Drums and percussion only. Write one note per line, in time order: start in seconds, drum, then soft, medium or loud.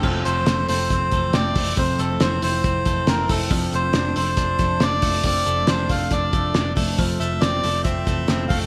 0.03 kick loud
0.03 crash medium
0.25 hi-hat pedal medium
0.25 open hi-hat medium
0.46 snare loud
0.46 hi-hat pedal medium
0.46 open hi-hat medium
0.68 hi-hat pedal medium
0.68 open hi-hat medium
0.90 kick medium
0.90 snare soft
0.90 hi-hat pedal medium
0.90 open hi-hat medium
1.12 kick medium
1.12 hi-hat pedal medium
1.12 open hi-hat medium
1.33 snare loud
1.33 hi-hat pedal medium
1.33 open hi-hat medium
1.55 kick loud
1.55 hi-hat pedal medium
1.55 open hi-hat medium
1.77 kick loud
1.77 hi-hat pedal medium
1.77 open hi-hat medium
1.99 hi-hat pedal medium
1.99 open hi-hat medium
2.20 snare loud
2.20 hi-hat pedal medium
2.20 open hi-hat medium
2.42 hi-hat pedal medium
2.42 open hi-hat medium
2.64 kick medium
2.64 hi-hat pedal medium
2.64 open hi-hat medium
2.85 kick medium
2.85 hi-hat pedal medium
2.85 open hi-hat medium
3.07 snare medium
3.07 hi-hat pedal medium
3.07 open hi-hat medium
3.29 kick medium
3.29 hi-hat pedal medium
3.29 open hi-hat medium
3.51 kick loud
3.51 hi-hat pedal medium
3.51 open hi-hat loud
3.72 hi-hat pedal medium
3.72 open hi-hat medium
3.93 snare loud
3.93 hi-hat pedal medium
3.93 open hi-hat medium
4.16 hi-hat pedal medium
4.16 open hi-hat medium
4.37 kick medium
4.37 snare soft
4.37 hi-hat pedal medium
4.37 open hi-hat medium
4.59 kick loud
4.59 hi-hat pedal medium
4.59 open hi-hat medium
4.80 snare medium
4.80 hi-hat pedal medium
4.80 open hi-hat medium
5.02 kick medium
5.02 hi-hat pedal medium
5.02 open hi-hat medium
5.23 kick loud
5.23 hi-hat pedal medium
5.23 open hi-hat loud
5.45 hi-hat pedal medium
5.45 open hi-hat medium
5.67 snare loud
5.67 hi-hat pedal medium
5.67 open hi-hat medium
5.89 kick medium
5.89 hi-hat pedal medium
5.89 open hi-hat medium
6.11 kick medium
6.11 snare soft
6.11 hi-hat pedal medium
6.11 open hi-hat medium
6.33 kick loud
6.33 hi-hat pedal medium
6.33 open hi-hat medium
6.54 snare medium
6.54 hi-hat pedal medium
6.54 open hi-hat medium
6.76 kick medium
6.76 hi-hat pedal medium
6.76 open hi-hat medium
6.99 kick loud
6.99 hi-hat pedal medium
6.99 open hi-hat loud
7.21 hi-hat pedal medium
7.21 open hi-hat medium
7.42 snare loud
7.42 hi-hat pedal medium
7.42 open hi-hat medium
7.63 hi-hat pedal medium
7.63 open hi-hat medium
7.85 kick medium
7.85 snare soft
7.85 hi-hat pedal medium
7.85 open hi-hat medium
8.07 kick medium
8.07 hi-hat pedal medium
8.07 open hi-hat medium
8.28 snare medium
8.28 hi-hat pedal medium
8.28 open hi-hat medium
8.50 kick medium
8.50 hi-hat pedal medium
8.50 open hi-hat medium